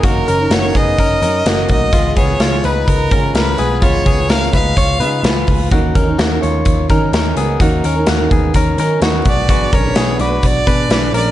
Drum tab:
HH |xxxxxxxx|xxxxxxxx|xxxxxxxo|xxxxxxxx|
SD |--o---o-|--o---o-|--o---o-|--o---o-|
BD |o--oo--o|oo--oo--|oo-oo--o|oo--oo--|

HH |xxxxxxxx|xxxxxxxx|
SD |--o---o-|--o---o-|
BD |o--oo--o|oo--oo--|